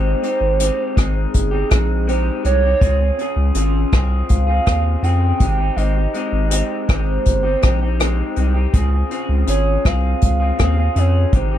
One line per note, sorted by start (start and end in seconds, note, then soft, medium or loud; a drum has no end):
0.00 0.15 G#1 loud
0.00 0.21 G#3 medium
0.00 0.22 C4 medium
0.00 0.23 D#4 medium
0.00 0.23 G4 medium
0.00 0.99 C5 loud
0.22 0.58 G#3 medium
0.22 0.59 C4 medium
0.22 0.59 D#4 medium
0.22 0.60 G4 medium
0.22 closed hi-hat soft
0.41 0.70 G#1 medium
0.60 0.95 G#3 medium
0.60 0.96 C4 medium
0.60 0.97 D#4 medium
0.60 0.97 G4 medium
0.60 closed hi-hat medium
0.96 1.26 G#1 loud
0.96 1.52 G#3 medium
0.96 1.53 C4 medium
0.96 1.52 D#4 medium
0.96 2.08 G#4 medium
0.96 kick medium
0.96 cross-stick medium
0.96 closed hi-hat soft
1.34 1.64 G1 medium
1.34 kick medium
1.34 closed hi-hat medium
1.51 1.70 C4 soft
1.51 1.71 D#4 soft
1.51 1.70 G4 medium
1.70 2.30 A#1 medium
1.70 2.06 G#3 medium
1.70 2.07 C4 medium
1.70 2.08 D#4 medium
1.70 kick medium
1.70 cross-stick medium
1.70 closed hi-hat medium
2.07 2.42 G#3 medium
2.07 2.43 C4 medium
2.07 2.44 D#4 medium
2.07 2.45 G4 medium
2.07 2.43 C5 loud
2.07 closed hi-hat medium
2.43 2.74 C2 medium
2.43 2.62 G#3 medium
2.43 2.63 C4 medium
2.43 2.63 D#4 soft
2.43 2.61 G4 medium
2.43 3.89 C#5 loud
2.43 closed hi-hat soft
2.63 2.80 C4 soft
2.63 2.82 D#4 soft
2.63 2.81 G4 medium
2.81 3.11 C#2 loud
2.81 3.00 C#3 medium
2.81 3.00 C4 medium
2.81 3.00 F4 medium
2.81 2.98 G#4 medium
2.81 kick loud
2.81 closed hi-hat medium
2.99 3.20 C4 soft
2.99 3.19 F4 soft
2.99 3.18 G#4 soft
3.18 3.54 C#3 medium
3.18 3.55 F4 medium
3.18 3.56 G#4 medium
3.18 closed hi-hat soft
3.36 3.51 C#2 medium
3.55 3.85 G#1 loud
3.55 3.92 C#3 medium
3.55 3.92 F4 medium
3.55 3.93 G#4 medium
3.55 closed hi-hat medium
3.92 4.22 C2 medium
3.92 4.48 C4 medium
3.92 4.47 F4 medium
3.92 4.46 G#4 medium
3.92 kick medium
3.92 cross-stick medium
3.92 closed hi-hat soft
4.29 4.60 C#2 medium
4.29 5.05 F5 loud
4.29 kick medium
4.29 closed hi-hat medium
4.47 4.65 C4 soft
4.47 4.67 F4 soft
4.47 4.66 G#4 medium
4.65 4.96 D#2 medium
4.65 5.01 C#3 medium
4.65 5.02 C4 medium
4.65 5.03 F4 medium
4.65 5.04 G#4 medium
4.65 kick medium
4.65 cross-stick medium
4.65 closed hi-hat medium
5.02 5.33 F2 medium
5.02 5.40 C#3 medium
5.02 5.39 C4 medium
5.02 5.41 F4 medium
5.02 5.41 G#4 medium
5.02 5.78 G5 loud
5.02 closed hi-hat medium
5.39 5.70 G#1 medium
5.39 5.59 G#3 medium
5.39 5.59 C4 medium
5.39 5.58 D#4 medium
5.39 5.56 G4 medium
5.39 kick medium
5.39 closed hi-hat soft
5.58 5.76 C4 soft
5.58 5.77 D#4 soft
5.58 5.77 G4 medium
5.76 6.07 G#1 loud
5.76 5.96 G#3 medium
5.76 5.96 C4 medium
5.76 5.95 D#4 medium
5.76 5.94 G4 medium
5.76 6.90 D#5 loud
5.76 closed hi-hat medium
5.95 6.14 C4 soft
5.95 6.15 D#4 soft
5.95 6.14 G4 soft
6.14 6.49 G#3 medium
6.14 6.50 C4 medium
6.14 6.51 D#4 medium
6.14 6.51 G4 medium
6.14 closed hi-hat soft
6.32 6.62 G#1 medium
6.50 6.86 G#3 medium
6.50 6.87 C4 medium
6.50 6.88 D#4 medium
6.50 6.89 G4 medium
6.50 closed hi-hat medium
6.87 7.19 G#1 medium
6.87 7.44 G#3 medium
6.87 7.44 C4 soft
6.87 7.43 D#4 medium
6.87 7.42 G4 medium
6.87 8.37 C5 medium
6.87 kick medium
6.87 cross-stick medium
6.87 closed hi-hat soft
7.25 7.56 G1 medium
7.25 kick medium
7.25 closed hi-hat medium
7.43 7.62 C4 soft
7.43 7.63 D#4 soft
7.43 7.62 G4 medium
7.61 8.22 A#1 medium
7.61 7.81 G#3 medium
7.61 7.81 C4 medium
7.61 7.82 D#4 medium
7.61 7.80 G4 medium
7.61 kick medium
7.61 cross-stick medium
7.61 closed hi-hat soft
7.81 7.99 C4 soft
7.81 8.00 D#4 medium
7.81 8.00 G4 soft
7.99 8.35 G#3 medium
7.99 8.36 C4 medium
7.99 8.37 D#4 medium
7.99 8.38 G4 medium
7.99 cross-stick medium
7.99 closed hi-hat medium
8.36 8.67 C2 medium
8.36 8.55 G#3 medium
8.36 8.56 C4 medium
8.36 8.55 D#4 medium
8.36 8.53 G4 medium
8.36 closed hi-hat soft
8.54 8.73 C4 soft
8.54 8.74 D#4 soft
8.54 8.73 G4 medium
8.73 9.03 C#2 loud
8.73 8.92 C#3 medium
8.73 8.93 C4 medium
8.73 8.92 F4 medium
8.73 8.90 G#4 medium
8.73 kick loud
8.73 closed hi-hat medium
8.91 9.10 C4 soft
8.91 9.10 F4 soft
8.91 9.11 G#4 soft
9.09 9.46 C#3 medium
9.09 9.48 C4 medium
9.09 9.47 F4 medium
9.09 9.48 G#4 medium
9.09 closed hi-hat soft
9.29 9.44 C#2 medium
9.47 9.77 G#1 medium
9.47 9.85 C#3 medium
9.47 9.85 F4 medium
9.47 9.86 G#4 medium
9.47 9.87 C#5 loud
9.47 closed hi-hat medium
9.85 10.15 C2 medium
9.85 10.41 C4 medium
9.85 10.40 F4 medium
9.85 10.39 G#4 medium
9.85 10.23 F5 medium
9.85 kick medium
9.85 cross-stick medium
9.85 closed hi-hat soft
10.21 10.52 C#2 medium
10.21 11.00 F5 loud
10.21 kick medium
10.21 closed hi-hat medium
10.40 10.57 C4 soft
10.40 10.58 F4 medium
10.40 10.59 G#4 medium
10.58 10.89 D#2 medium
10.58 10.77 C#3 medium
10.58 10.77 C4 medium
10.58 10.77 F4 medium
10.58 10.76 G#4 medium
10.58 kick medium
10.58 cross-stick medium
10.58 closed hi-hat soft
10.77 10.97 C4 soft
10.77 10.96 F4 soft
10.77 10.96 G#4 soft
10.95 11.26 F2 medium
10.95 11.33 C#3 medium
10.95 11.34 F4 medium
10.95 11.34 G#4 medium
10.95 11.38 C#5 medium
10.95 closed hi-hat medium
11.32 11.58 G#1 medium
11.32 11.51 G#3 medium
11.32 11.52 C4 medium
11.32 11.52 D#4 medium
11.32 11.50 G4 medium
11.32 11.58 C5 medium
11.32 kick loud
11.32 closed hi-hat soft
11.51 11.58 C4 soft
11.51 11.58 D#4 soft
11.51 11.58 G4 medium